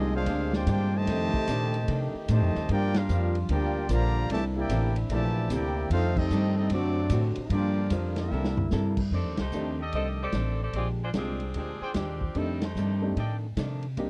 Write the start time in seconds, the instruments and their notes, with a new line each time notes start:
Already playing: upright bass C2, hollow-body jazz guitar A#2 G#3 D4 G4, trombone section C3 F3 G#3 A#3 C4 D#4 F4, trumpet section C4 F4 G#4 D#5
0.14 trombone section G#3 D4 F4, trumpet section D4 G#4 C5 F5
0.26 upright bass D2, hollow-body jazz guitar A#2 G#3 D4 G4, kick, ride
0.53 trombone section G#3 D4 G4, trumpet section F4 C5 D5 G5, snare
0.66 upright bass G2, hollow-body jazz guitar A#2 G#3 D4 G4, trombone section G#3 D4 G4, trumpet section F4 C5 D5 G5, kick, hi-hat pedal, ride
0.95 trombone section C3 D#3 A3, trumpet section G4 C5 D#5 A5
1.07 upright bass F2, hollow-body jazz guitar F2 D#3 A3 D4, trombone section D#3 A3 D#4 G4, kick, snare, ride
1.33 muted upright bass stroke, kick
1.48 hollow-body jazz guitar F2 D#3 A3 D4, upright bass A#2, kick, hi-hat pedal, ride
1.74 ride
1.88 hollow-body jazz guitar F2 D#3 A3 D4, upright bass C3, kick, ride
2.14 muted upright bass stroke
2.28 hollow-body jazz guitar F2 D#3 A3 D4, upright bass A2, trombone section C3 D#3 A3, trumpet section G4 C5 D#5 A5, kick, hi-hat pedal, ride
2.41 upright bass F2
2.55 upright bass D#2, snare
2.69 upright bass G2, hollow-body jazz guitar G2 F3 A#3 D4, trombone section G3 A#3 D4 F4 G4, trumpet section F4 A#4 D5 G5, kick, ride
2.94 trombone section A#3 D4 F4, trumpet section D4 G4 A#4 F5, snare, ride
3.09 upright bass F2, hollow-body jazz guitar G2 F3 A#3 D4, hi-hat pedal
3.35 ride
3.49 upright bass D2, hollow-body jazz guitar G2 F3 A#3 D4, trombone section A#3 D4 G4, trumpet section F4 A#4 D5 G5, kick, ride
3.89 upright bass A#1, hollow-body jazz guitar G2 F3 A#3 D4, trombone section D3 F3 A#3, trumpet section G4 D5 F5 A#5, kick, hi-hat pedal, ride
4.29 upright bass C2, trombone section A#2 E3 A3 C4 E4, hollow-body jazz guitar C3 A#3 E4 A4, trumpet section G4 D5 E5 A5, kick, ride
4.57 trombone section A#3 E4 G4, trumpet section E4 A#4 D5 G5
4.69 upright bass A1, hollow-body jazz guitar C3 A#3 E4 A4, kick, hi-hat pedal, ride
4.96 ride
5.09 upright bass A#1, trombone section A#2 E3 A3, hollow-body jazz guitar C3 A#3 E4 A4, trumpet section G4 D5 E5 A5, kick, ride
5.50 upright bass D2, hollow-body jazz guitar C3 A#3 E4 A4, trombone section A#3 E4 G4, trumpet section E4 A#4 G5, kick, hi-hat pedal, ride
5.54 trumpet section D5
5.90 upright bass F2, hollow-body jazz guitar F2 D#3 A3 D4, trombone section G3 A3 C4 D#4 F4, trumpet section D#4 A4 C5 F5, kick, ride
6.16 trombone section A3 C4 D#4, trumpet section C4 G4 A4 D#5, kick, crash
6.30 hollow-body jazz guitar F2 D#3 A3 D4, upright bass G2, hi-hat pedal
6.58 trombone section A3 C4 D#4, trumpet section C4 G4 A4 D#5
6.70 upright bass F#2, trombone section C3 F#3 A3 D4, hollow-body jazz guitar D3 A3 C4, trumpet section C4 F#4 A4 D5, kick, ride
6.74 hollow-body jazz guitar F#4
7.10 upright bass A2, hollow-body jazz guitar D3 A3 C4 F#4, kick, hi-hat pedal, ride
7.35 muted upright bass stroke, ride
7.50 upright bass G2, hollow-body jazz guitar G2 F3 A#3 D4, trombone section D3 F3 G3 A#3 D4 F4, trumpet section A#3 F4 G4 D5, kick, ride
7.90 upright bass F2, hollow-body jazz guitar G2 F3 A#3 D4, kick, hi-hat pedal, ride
8.16 trombone section G3 A#3 E4, trumpet section G4 A#4 E5, snare, ride
8.20 trumpet section D4
8.31 upright bass C2, hollow-body jazz guitar C3 A#3 E4 A4, trombone section G3 A#3 E4
8.44 snare
8.57 floor tom
8.71 upright bass G2, hollow-body jazz guitar C3 A#3 E4 A4, snare, hi-hat pedal
8.97 kick, crash
9.11 upright bass F2, hollow-body jazz guitar F2 D#3 A3 D4, saxophone section C4 G4 A4 D5, kick
9.25 upright bass D#2
9.37 upright bass C2, saxophone section A3 D#4 G4 C5, snare, ride
9.52 upright bass D#2, hollow-body jazz guitar F2 D#3 A3 D4, grand piano A3 C4 D4 D#4 G4, hi-hat pedal
9.79 trumpet section G4 A4 D5 D#5
9.92 upright bass C2, hollow-body jazz guitar F2 D#3 A3 D4, saxophone section C4 G4 A4 D#5, kick, ride
10.23 saxophone section C4 G4 A4 D5
10.32 upright bass A1, hollow-body jazz guitar F2 D#3 A3 D4, kick, snare, hi-hat pedal, ride
10.63 saxophone section C4 G4 A4 D5
10.73 upright bass A#1, hollow-body jazz guitar A#2 G#3 D4 G4, saxophone section C4 F4 G#4 D5, kick, ride
11.03 saxophone section G#3 D4 F4 C5
11.13 upright bass C2, hollow-body jazz guitar A#2 G#3 D4 G4, grand piano G#3 C4 D4 F4 G4, saxophone section C4, kick, snare, hi-hat pedal, ride
11.17 saxophone section F3 D4 G#4
11.40 ride
11.54 upright bass D2, hollow-body jazz guitar A#2 G#3 D4, saxophone section F3 C4 D4 G#4, kick, ride
11.58 hollow-body jazz guitar G4
11.81 trumpet section G#4 C5 D5 G5, muted upright bass stroke
11.94 upright bass D#2, hollow-body jazz guitar A#2 G#3 D4 G4, saxophone section F3 C4 D4 G4, kick, snare, hi-hat pedal, ride
12.21 kick
12.35 upright bass F2, hollow-body jazz guitar F2 D#3 A3 D4, saxophone section G3 C4 D#4 A4, grand piano A3 C4 D4 D#4 G4, kick, ride
12.62 saxophone section A3 D#4 G4 C5, snare, ride
12.75 hollow-body jazz guitar F2 D#3 A3 D4, upright bass G2, hi-hat pedal
13.02 grand piano A3 C4 D4 D#4 G4
13.16 hollow-body jazz guitar F2 D#3 A3 D4, upright bass A2, trumpet section A4 D5 D#5 G5, kick, ride
13.57 hollow-body jazz guitar F2 D#3 A3 D4, upright bass C3, kick, snare, hi-hat pedal, ride
13.83 ride
13.97 upright bass C2, hollow-body jazz guitar C3 A#3 D#4 G4, grand piano A#3 C4 D4 D#4 G4, kick, ride